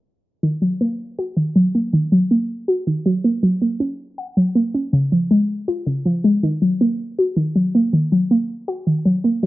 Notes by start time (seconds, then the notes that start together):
0.43 D#3
0.62 F#3
0.81 A#3
1.19 F#4
1.37 D#3
1.56 F#3
1.75 A#3
1.93 D#3
2.12 F#3
2.31 A#3
2.68 F#4
2.87 D#3
3.06 F#3
3.24 A#3
3.43 F#3
3.62 A#3
3.80 C#4
4.18 F#5
4.37 F#3
4.55 A#3
4.74 C#4
4.93 C#3
5.12 F3
5.31 G#3
5.68 F4
5.87 C#3
6.05 F3
6.24 G#3
6.43 D#3
6.62 F#3
6.81 A#3
7.18 F#4
7.36 D#3
7.55 F#3
7.75 A#3
7.93 D#3
8.12 F#3
8.31 A#3
8.68 F#4
8.87 D#3
9.05 F#3
9.24 A#3
9.43 F#3